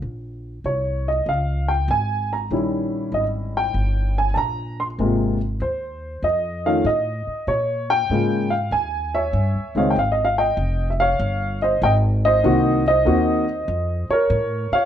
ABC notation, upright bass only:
X:1
M:4/4
L:1/8
Q:"Swing" 1/4=97
K:Ab
V:1 name="Upright bass" clef=bass
B,,,2 C,,2 D,,2 A,,,2 | B,,,2 A,,,2 G,,,2 B,,,2 | A,,,2 E,,2 F,,2 =A,, z | B,,2 A,,2 E,,2 (3G,, E,, D,, |
A,,,2 F,,,2 G,,,2 A,,,2 | C,,2 E,,2 F,, z =A,, z |]